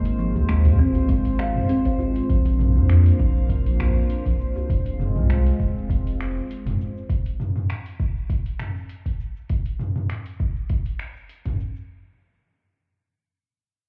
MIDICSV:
0, 0, Header, 1, 7, 480
1, 0, Start_track
1, 0, Tempo, 600000
1, 1834, Time_signature, 4, 2, 24, 8
1, 11108, End_track
2, 0, Start_track
2, 0, Title_t, "Synth texture"
2, 0, Program_c, 0, 99
2, 0, Note_on_c, 0, 72, 81
2, 1841, Note_on_c, 0, 77, 81
2, 1845, Note_off_c, 0, 72, 0
2, 3768, Note_off_c, 0, 77, 0
2, 11108, End_track
3, 0, Start_track
3, 0, Title_t, "Analog synth pad"
3, 0, Program_c, 1, 89
3, 0, Note_on_c, 1, 56, 76
3, 0, Note_on_c, 1, 60, 69
3, 0, Note_on_c, 1, 65, 69
3, 0, Note_on_c, 1, 72, 88
3, 1800, Note_off_c, 1, 56, 0
3, 1816, Note_off_c, 1, 60, 0
3, 1816, Note_off_c, 1, 65, 0
3, 1816, Note_off_c, 1, 72, 0
3, 1829, Note_on_c, 1, 65, 70
3, 1829, Note_on_c, 1, 72, 80
3, 1835, Note_on_c, 1, 58, 75
3, 1836, Note_on_c, 1, 62, 67
3, 3732, Note_off_c, 1, 65, 0
3, 3735, Note_off_c, 1, 58, 0
3, 3736, Note_off_c, 1, 62, 0
3, 3762, Note_on_c, 1, 56, 70
3, 3763, Note_on_c, 1, 60, 63
3, 3764, Note_on_c, 1, 65, 66
3, 5640, Note_off_c, 1, 72, 0
3, 5659, Note_off_c, 1, 56, 0
3, 5660, Note_off_c, 1, 60, 0
3, 5660, Note_off_c, 1, 65, 0
3, 11108, End_track
4, 0, Start_track
4, 0, Title_t, "Kalimba"
4, 0, Program_c, 2, 108
4, 151, Note_on_c, 2, 53, 75
4, 275, Note_off_c, 2, 53, 0
4, 391, Note_on_c, 2, 56, 93
4, 621, Note_off_c, 2, 56, 0
4, 631, Note_on_c, 2, 60, 103
4, 755, Note_off_c, 2, 60, 0
4, 870, Note_on_c, 2, 56, 104
4, 988, Note_off_c, 2, 56, 0
4, 1114, Note_on_c, 2, 77, 97
4, 1230, Note_off_c, 2, 77, 0
4, 1355, Note_on_c, 2, 60, 87
4, 1477, Note_off_c, 2, 60, 0
4, 1485, Note_on_c, 2, 72, 75
4, 1547, Note_off_c, 2, 72, 0
4, 1596, Note_on_c, 2, 65, 79
4, 1718, Note_off_c, 2, 65, 0
4, 11108, End_track
5, 0, Start_track
5, 0, Title_t, "Sub bass"
5, 0, Program_c, 3, 38
5, 0, Note_on_c, 3, 32, 105
5, 286, Note_on_c, 3, 39, 91
5, 298, Note_off_c, 3, 32, 0
5, 570, Note_off_c, 3, 39, 0
5, 635, Note_on_c, 3, 32, 90
5, 927, Note_off_c, 3, 32, 0
5, 1005, Note_on_c, 3, 32, 84
5, 1289, Note_off_c, 3, 32, 0
5, 1482, Note_on_c, 3, 32, 88
5, 1768, Note_off_c, 3, 32, 0
5, 1835, Note_on_c, 3, 34, 100
5, 2205, Note_on_c, 3, 41, 84
5, 2217, Note_off_c, 3, 34, 0
5, 2489, Note_off_c, 3, 41, 0
5, 2556, Note_on_c, 3, 34, 89
5, 2847, Note_off_c, 3, 34, 0
5, 2923, Note_on_c, 3, 34, 84
5, 3208, Note_off_c, 3, 34, 0
5, 3406, Note_on_c, 3, 34, 89
5, 3474, Note_off_c, 3, 34, 0
5, 3757, Note_on_c, 3, 29, 97
5, 4126, Note_on_c, 3, 36, 80
5, 4138, Note_off_c, 3, 29, 0
5, 4410, Note_off_c, 3, 36, 0
5, 4478, Note_on_c, 3, 29, 89
5, 4768, Note_off_c, 3, 29, 0
5, 4841, Note_on_c, 3, 29, 86
5, 5127, Note_off_c, 3, 29, 0
5, 5319, Note_on_c, 3, 29, 87
5, 5391, Note_off_c, 3, 29, 0
5, 11108, End_track
6, 0, Start_track
6, 0, Title_t, "Djembe"
6, 43, Note_on_c, 9, 62, 77
6, 123, Note_off_c, 9, 62, 0
6, 150, Note_on_c, 9, 62, 40
6, 230, Note_off_c, 9, 62, 0
6, 282, Note_on_c, 9, 64, 84
6, 285, Note_on_c, 9, 63, 68
6, 362, Note_off_c, 9, 64, 0
6, 365, Note_off_c, 9, 63, 0
6, 521, Note_on_c, 9, 64, 89
6, 601, Note_off_c, 9, 64, 0
6, 632, Note_on_c, 9, 62, 64
6, 712, Note_off_c, 9, 62, 0
6, 760, Note_on_c, 9, 64, 99
6, 840, Note_off_c, 9, 64, 0
6, 1110, Note_on_c, 9, 63, 66
6, 1190, Note_off_c, 9, 63, 0
6, 1354, Note_on_c, 9, 63, 33
6, 1434, Note_off_c, 9, 63, 0
6, 1485, Note_on_c, 9, 63, 76
6, 1565, Note_off_c, 9, 63, 0
6, 1588, Note_on_c, 9, 63, 78
6, 1668, Note_off_c, 9, 63, 0
6, 1962, Note_on_c, 9, 62, 74
6, 2042, Note_off_c, 9, 62, 0
6, 2072, Note_on_c, 9, 62, 32
6, 2152, Note_off_c, 9, 62, 0
6, 2202, Note_on_c, 9, 63, 61
6, 2282, Note_off_c, 9, 63, 0
6, 2558, Note_on_c, 9, 62, 58
6, 2638, Note_off_c, 9, 62, 0
6, 3040, Note_on_c, 9, 64, 68
6, 3120, Note_off_c, 9, 64, 0
6, 3169, Note_on_c, 9, 63, 64
6, 3249, Note_off_c, 9, 63, 0
6, 3404, Note_on_c, 9, 62, 45
6, 3484, Note_off_c, 9, 62, 0
6, 3645, Note_on_c, 9, 63, 79
6, 3650, Note_on_c, 9, 62, 36
6, 3652, Note_on_c, 9, 64, 78
6, 3725, Note_off_c, 9, 63, 0
6, 3730, Note_off_c, 9, 62, 0
6, 3732, Note_off_c, 9, 64, 0
6, 11108, End_track
7, 0, Start_track
7, 0, Title_t, "Drums"
7, 41, Note_on_c, 9, 46, 50
7, 48, Note_on_c, 9, 69, 24
7, 121, Note_off_c, 9, 46, 0
7, 128, Note_off_c, 9, 69, 0
7, 155, Note_on_c, 9, 69, 78
7, 235, Note_off_c, 9, 69, 0
7, 286, Note_on_c, 9, 69, 32
7, 366, Note_off_c, 9, 69, 0
7, 390, Note_on_c, 9, 26, 79
7, 390, Note_on_c, 9, 46, 70
7, 396, Note_on_c, 9, 69, 44
7, 470, Note_off_c, 9, 26, 0
7, 470, Note_off_c, 9, 46, 0
7, 476, Note_off_c, 9, 69, 0
7, 519, Note_on_c, 9, 45, 82
7, 519, Note_on_c, 9, 46, 48
7, 526, Note_on_c, 9, 69, 22
7, 599, Note_off_c, 9, 45, 0
7, 599, Note_off_c, 9, 46, 0
7, 606, Note_off_c, 9, 69, 0
7, 635, Note_on_c, 9, 36, 99
7, 638, Note_on_c, 9, 69, 78
7, 715, Note_off_c, 9, 36, 0
7, 718, Note_off_c, 9, 69, 0
7, 759, Note_on_c, 9, 46, 35
7, 765, Note_on_c, 9, 69, 34
7, 839, Note_off_c, 9, 46, 0
7, 845, Note_off_c, 9, 69, 0
7, 871, Note_on_c, 9, 46, 72
7, 874, Note_on_c, 9, 36, 106
7, 878, Note_on_c, 9, 69, 46
7, 951, Note_off_c, 9, 46, 0
7, 954, Note_off_c, 9, 36, 0
7, 958, Note_off_c, 9, 69, 0
7, 1000, Note_on_c, 9, 46, 50
7, 1007, Note_on_c, 9, 69, 23
7, 1080, Note_off_c, 9, 46, 0
7, 1087, Note_off_c, 9, 69, 0
7, 1113, Note_on_c, 9, 26, 86
7, 1120, Note_on_c, 9, 69, 74
7, 1193, Note_off_c, 9, 26, 0
7, 1200, Note_off_c, 9, 69, 0
7, 1243, Note_on_c, 9, 45, 78
7, 1250, Note_on_c, 9, 69, 30
7, 1323, Note_off_c, 9, 45, 0
7, 1330, Note_off_c, 9, 69, 0
7, 1354, Note_on_c, 9, 46, 75
7, 1361, Note_on_c, 9, 69, 45
7, 1434, Note_off_c, 9, 46, 0
7, 1441, Note_off_c, 9, 69, 0
7, 1482, Note_on_c, 9, 46, 50
7, 1483, Note_on_c, 9, 36, 58
7, 1489, Note_on_c, 9, 69, 22
7, 1562, Note_off_c, 9, 46, 0
7, 1563, Note_off_c, 9, 36, 0
7, 1569, Note_off_c, 9, 69, 0
7, 1600, Note_on_c, 9, 69, 78
7, 1680, Note_off_c, 9, 69, 0
7, 1725, Note_on_c, 9, 46, 34
7, 1732, Note_on_c, 9, 69, 32
7, 1805, Note_off_c, 9, 46, 0
7, 1812, Note_off_c, 9, 69, 0
7, 1836, Note_on_c, 9, 36, 109
7, 1838, Note_on_c, 9, 46, 66
7, 1844, Note_on_c, 9, 69, 43
7, 1916, Note_off_c, 9, 36, 0
7, 1918, Note_off_c, 9, 46, 0
7, 1924, Note_off_c, 9, 69, 0
7, 1965, Note_on_c, 9, 46, 46
7, 1972, Note_on_c, 9, 69, 23
7, 2045, Note_off_c, 9, 46, 0
7, 2052, Note_off_c, 9, 69, 0
7, 2075, Note_on_c, 9, 45, 75
7, 2082, Note_on_c, 9, 69, 74
7, 2155, Note_off_c, 9, 45, 0
7, 2162, Note_off_c, 9, 69, 0
7, 2204, Note_on_c, 9, 45, 67
7, 2211, Note_on_c, 9, 69, 28
7, 2284, Note_off_c, 9, 45, 0
7, 2291, Note_off_c, 9, 69, 0
7, 2316, Note_on_c, 9, 26, 78
7, 2316, Note_on_c, 9, 46, 66
7, 2323, Note_on_c, 9, 69, 41
7, 2396, Note_off_c, 9, 26, 0
7, 2396, Note_off_c, 9, 46, 0
7, 2403, Note_off_c, 9, 69, 0
7, 2447, Note_on_c, 9, 46, 43
7, 2453, Note_on_c, 9, 69, 20
7, 2527, Note_off_c, 9, 46, 0
7, 2533, Note_off_c, 9, 69, 0
7, 2557, Note_on_c, 9, 36, 103
7, 2563, Note_on_c, 9, 69, 77
7, 2637, Note_off_c, 9, 36, 0
7, 2643, Note_off_c, 9, 69, 0
7, 2694, Note_on_c, 9, 69, 31
7, 2774, Note_off_c, 9, 69, 0
7, 2796, Note_on_c, 9, 36, 104
7, 2799, Note_on_c, 9, 46, 64
7, 2806, Note_on_c, 9, 69, 44
7, 2876, Note_off_c, 9, 36, 0
7, 2879, Note_off_c, 9, 46, 0
7, 2886, Note_off_c, 9, 69, 0
7, 2930, Note_on_c, 9, 46, 43
7, 2937, Note_on_c, 9, 69, 22
7, 3010, Note_off_c, 9, 46, 0
7, 3017, Note_off_c, 9, 69, 0
7, 3040, Note_on_c, 9, 26, 73
7, 3040, Note_on_c, 9, 45, 58
7, 3047, Note_on_c, 9, 69, 77
7, 3120, Note_off_c, 9, 26, 0
7, 3120, Note_off_c, 9, 45, 0
7, 3127, Note_off_c, 9, 69, 0
7, 3175, Note_on_c, 9, 69, 30
7, 3255, Note_off_c, 9, 69, 0
7, 3279, Note_on_c, 9, 46, 68
7, 3285, Note_on_c, 9, 69, 42
7, 3359, Note_off_c, 9, 46, 0
7, 3365, Note_off_c, 9, 69, 0
7, 3406, Note_on_c, 9, 36, 56
7, 3409, Note_on_c, 9, 46, 41
7, 3416, Note_on_c, 9, 69, 20
7, 3486, Note_off_c, 9, 36, 0
7, 3489, Note_off_c, 9, 46, 0
7, 3496, Note_off_c, 9, 69, 0
7, 3526, Note_on_c, 9, 69, 72
7, 3606, Note_off_c, 9, 69, 0
7, 3656, Note_on_c, 9, 69, 33
7, 3736, Note_off_c, 9, 69, 0
7, 3758, Note_on_c, 9, 36, 112
7, 3761, Note_on_c, 9, 46, 62
7, 3768, Note_on_c, 9, 69, 45
7, 3838, Note_off_c, 9, 36, 0
7, 3841, Note_off_c, 9, 46, 0
7, 3848, Note_off_c, 9, 69, 0
7, 3887, Note_on_c, 9, 46, 42
7, 3893, Note_on_c, 9, 69, 22
7, 3967, Note_off_c, 9, 46, 0
7, 3973, Note_off_c, 9, 69, 0
7, 3998, Note_on_c, 9, 45, 67
7, 4004, Note_on_c, 9, 69, 73
7, 4078, Note_off_c, 9, 45, 0
7, 4084, Note_off_c, 9, 69, 0
7, 4127, Note_on_c, 9, 45, 66
7, 4134, Note_on_c, 9, 69, 31
7, 4207, Note_off_c, 9, 45, 0
7, 4214, Note_off_c, 9, 69, 0
7, 4239, Note_on_c, 9, 26, 75
7, 4239, Note_on_c, 9, 46, 62
7, 4246, Note_on_c, 9, 69, 44
7, 4319, Note_off_c, 9, 26, 0
7, 4319, Note_off_c, 9, 46, 0
7, 4326, Note_off_c, 9, 69, 0
7, 4370, Note_on_c, 9, 46, 43
7, 4377, Note_on_c, 9, 69, 21
7, 4450, Note_off_c, 9, 46, 0
7, 4457, Note_off_c, 9, 69, 0
7, 4478, Note_on_c, 9, 36, 104
7, 4489, Note_on_c, 9, 69, 76
7, 4558, Note_off_c, 9, 36, 0
7, 4569, Note_off_c, 9, 69, 0
7, 4620, Note_on_c, 9, 69, 35
7, 4700, Note_off_c, 9, 69, 0
7, 4718, Note_on_c, 9, 36, 103
7, 4725, Note_on_c, 9, 46, 66
7, 4732, Note_on_c, 9, 69, 46
7, 4798, Note_off_c, 9, 36, 0
7, 4805, Note_off_c, 9, 46, 0
7, 4812, Note_off_c, 9, 69, 0
7, 4855, Note_on_c, 9, 46, 40
7, 4862, Note_on_c, 9, 69, 21
7, 4935, Note_off_c, 9, 46, 0
7, 4942, Note_off_c, 9, 69, 0
7, 4964, Note_on_c, 9, 26, 73
7, 4971, Note_on_c, 9, 69, 71
7, 5044, Note_off_c, 9, 26, 0
7, 5051, Note_off_c, 9, 69, 0
7, 5100, Note_on_c, 9, 69, 31
7, 5180, Note_off_c, 9, 69, 0
7, 5206, Note_on_c, 9, 46, 64
7, 5213, Note_on_c, 9, 69, 41
7, 5286, Note_off_c, 9, 46, 0
7, 5293, Note_off_c, 9, 69, 0
7, 5333, Note_on_c, 9, 45, 64
7, 5333, Note_on_c, 9, 46, 41
7, 5339, Note_on_c, 9, 69, 21
7, 5413, Note_off_c, 9, 45, 0
7, 5413, Note_off_c, 9, 46, 0
7, 5419, Note_off_c, 9, 69, 0
7, 5449, Note_on_c, 9, 69, 76
7, 5529, Note_off_c, 9, 69, 0
7, 5578, Note_on_c, 9, 69, 33
7, 5658, Note_off_c, 9, 69, 0
7, 5676, Note_on_c, 9, 36, 108
7, 5680, Note_on_c, 9, 46, 61
7, 5686, Note_on_c, 9, 69, 45
7, 5756, Note_off_c, 9, 36, 0
7, 5760, Note_off_c, 9, 46, 0
7, 5766, Note_off_c, 9, 69, 0
7, 5808, Note_on_c, 9, 46, 43
7, 5814, Note_on_c, 9, 69, 22
7, 5888, Note_off_c, 9, 46, 0
7, 5894, Note_off_c, 9, 69, 0
7, 5919, Note_on_c, 9, 45, 64
7, 5926, Note_on_c, 9, 69, 77
7, 5999, Note_off_c, 9, 45, 0
7, 6006, Note_off_c, 9, 69, 0
7, 6046, Note_on_c, 9, 45, 62
7, 6053, Note_on_c, 9, 69, 31
7, 6126, Note_off_c, 9, 45, 0
7, 6133, Note_off_c, 9, 69, 0
7, 6159, Note_on_c, 9, 26, 70
7, 6159, Note_on_c, 9, 46, 58
7, 6165, Note_on_c, 9, 69, 44
7, 6239, Note_off_c, 9, 26, 0
7, 6239, Note_off_c, 9, 46, 0
7, 6245, Note_off_c, 9, 69, 0
7, 6287, Note_on_c, 9, 46, 39
7, 6293, Note_on_c, 9, 69, 21
7, 6367, Note_off_c, 9, 46, 0
7, 6373, Note_off_c, 9, 69, 0
7, 6397, Note_on_c, 9, 36, 100
7, 6406, Note_on_c, 9, 69, 75
7, 6477, Note_off_c, 9, 36, 0
7, 6486, Note_off_c, 9, 69, 0
7, 6535, Note_on_c, 9, 69, 33
7, 6615, Note_off_c, 9, 69, 0
7, 6637, Note_on_c, 9, 36, 100
7, 6639, Note_on_c, 9, 46, 62
7, 6646, Note_on_c, 9, 69, 45
7, 6717, Note_off_c, 9, 36, 0
7, 6719, Note_off_c, 9, 46, 0
7, 6726, Note_off_c, 9, 69, 0
7, 6767, Note_on_c, 9, 46, 38
7, 6773, Note_on_c, 9, 69, 22
7, 6847, Note_off_c, 9, 46, 0
7, 6853, Note_off_c, 9, 69, 0
7, 6876, Note_on_c, 9, 26, 72
7, 6876, Note_on_c, 9, 45, 52
7, 6882, Note_on_c, 9, 69, 76
7, 6956, Note_off_c, 9, 26, 0
7, 6956, Note_off_c, 9, 45, 0
7, 6962, Note_off_c, 9, 69, 0
7, 7014, Note_on_c, 9, 69, 32
7, 7094, Note_off_c, 9, 69, 0
7, 7115, Note_on_c, 9, 46, 58
7, 7122, Note_on_c, 9, 69, 43
7, 7195, Note_off_c, 9, 46, 0
7, 7202, Note_off_c, 9, 69, 0
7, 7247, Note_on_c, 9, 36, 58
7, 7248, Note_on_c, 9, 46, 40
7, 7255, Note_on_c, 9, 69, 20
7, 7327, Note_off_c, 9, 36, 0
7, 7328, Note_off_c, 9, 46, 0
7, 7335, Note_off_c, 9, 69, 0
7, 7363, Note_on_c, 9, 69, 78
7, 7443, Note_off_c, 9, 69, 0
7, 7492, Note_on_c, 9, 69, 31
7, 7572, Note_off_c, 9, 69, 0
7, 7596, Note_on_c, 9, 46, 57
7, 7599, Note_on_c, 9, 36, 106
7, 7602, Note_on_c, 9, 69, 42
7, 7676, Note_off_c, 9, 46, 0
7, 7679, Note_off_c, 9, 36, 0
7, 7682, Note_off_c, 9, 69, 0
7, 7725, Note_on_c, 9, 46, 40
7, 7732, Note_on_c, 9, 69, 22
7, 7805, Note_off_c, 9, 46, 0
7, 7812, Note_off_c, 9, 69, 0
7, 7836, Note_on_c, 9, 45, 65
7, 7843, Note_on_c, 9, 69, 73
7, 7916, Note_off_c, 9, 45, 0
7, 7923, Note_off_c, 9, 69, 0
7, 7966, Note_on_c, 9, 45, 64
7, 7973, Note_on_c, 9, 69, 28
7, 8046, Note_off_c, 9, 45, 0
7, 8053, Note_off_c, 9, 69, 0
7, 8077, Note_on_c, 9, 26, 67
7, 8077, Note_on_c, 9, 46, 57
7, 8084, Note_on_c, 9, 69, 41
7, 8157, Note_off_c, 9, 26, 0
7, 8157, Note_off_c, 9, 46, 0
7, 8164, Note_off_c, 9, 69, 0
7, 8205, Note_on_c, 9, 46, 38
7, 8212, Note_on_c, 9, 69, 21
7, 8285, Note_off_c, 9, 46, 0
7, 8292, Note_off_c, 9, 69, 0
7, 8320, Note_on_c, 9, 36, 96
7, 8323, Note_on_c, 9, 69, 72
7, 8400, Note_off_c, 9, 36, 0
7, 8403, Note_off_c, 9, 69, 0
7, 8452, Note_on_c, 9, 69, 32
7, 8532, Note_off_c, 9, 69, 0
7, 8556, Note_on_c, 9, 46, 58
7, 8559, Note_on_c, 9, 36, 101
7, 8563, Note_on_c, 9, 69, 43
7, 8636, Note_off_c, 9, 46, 0
7, 8639, Note_off_c, 9, 36, 0
7, 8643, Note_off_c, 9, 69, 0
7, 8686, Note_on_c, 9, 46, 37
7, 8693, Note_on_c, 9, 69, 20
7, 8766, Note_off_c, 9, 46, 0
7, 8773, Note_off_c, 9, 69, 0
7, 8795, Note_on_c, 9, 26, 64
7, 8802, Note_on_c, 9, 69, 70
7, 8875, Note_off_c, 9, 26, 0
7, 8882, Note_off_c, 9, 69, 0
7, 8931, Note_on_c, 9, 69, 30
7, 9011, Note_off_c, 9, 69, 0
7, 9035, Note_on_c, 9, 46, 54
7, 9042, Note_on_c, 9, 69, 42
7, 9115, Note_off_c, 9, 46, 0
7, 9122, Note_off_c, 9, 69, 0
7, 9164, Note_on_c, 9, 45, 64
7, 9164, Note_on_c, 9, 46, 37
7, 9167, Note_on_c, 9, 36, 53
7, 9171, Note_on_c, 9, 69, 19
7, 9244, Note_off_c, 9, 45, 0
7, 9244, Note_off_c, 9, 46, 0
7, 9247, Note_off_c, 9, 36, 0
7, 9251, Note_off_c, 9, 69, 0
7, 9282, Note_on_c, 9, 69, 71
7, 9362, Note_off_c, 9, 69, 0
7, 9409, Note_on_c, 9, 69, 31
7, 9489, Note_off_c, 9, 69, 0
7, 11108, End_track
0, 0, End_of_file